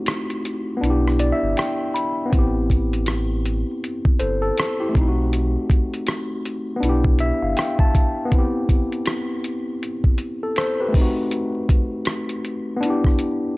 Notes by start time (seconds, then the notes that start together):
Already playing: A3 C4 D#4 E4 F#4 G4
0.06 cross-stick, closed hi-hat
0.30 closed hi-hat
0.45 closed hi-hat
0.77 B3
0.81 B1 D4, closed hi-hat
0.86 E4
0.90 G4
1.08 cross-stick
1.19 D5, closed hi-hat
1.32 E5
1.43 G1
1.57 G5, cross-stick, closed hi-hat
1.94 B5, closed hi-hat
2.25 B3
2.30 A1 C4, kick, closed hi-hat
2.34 E4
2.39 G4
2.70 kick, closed hi-hat
2.93 closed hi-hat
3.06 cross-stick, closed hi-hat
3.46 closed hi-hat
3.84 closed hi-hat
4.05 G1, kick
4.19 G1 A4 C5, closed hi-hat
4.42 A4
4.58 cross-stick, closed hi-hat
4.80 E4 G4
4.89 A3
4.93 B1 C4, kick, closed hi-hat
4.98 D#4 E4
5.08 F#4
5.33 closed hi-hat
5.70 kick, closed hi-hat
5.94 closed hi-hat
6.07 cross-stick, closed hi-hat
6.45 closed hi-hat
6.76 B3
6.80 B1 D4, closed hi-hat
6.85 E4
6.89 G4
7.04 kick
7.19 E5, closed hi-hat
7.42 G1 F5
7.57 G5, cross-stick, closed hi-hat
7.79 A5, kick
7.95 kick, closed hi-hat
8.25 B3
8.30 C4, kick, closed hi-hat
8.34 E4
8.39 G4
8.69 kick, closed hi-hat
8.92 closed hi-hat
9.06 cross-stick, closed hi-hat
9.44 closed hi-hat
9.83 closed hi-hat
10.04 kick
10.18 closed hi-hat
10.43 A4
10.56 A4 C5, cross-stick, closed hi-hat
10.80 G4 B4
10.88 A3
10.93 C4, kick, open hi-hat
10.97 D#4
11.02 F#4
11.31 closed hi-hat
11.69 kick, closed hi-hat
12.05 cross-stick, closed hi-hat
12.29 closed hi-hat
12.45 closed hi-hat
12.76 B3
12.81 D4, closed hi-hat
12.85 E4
12.90 G4
13.04 kick, cross-stick
13.19 closed hi-hat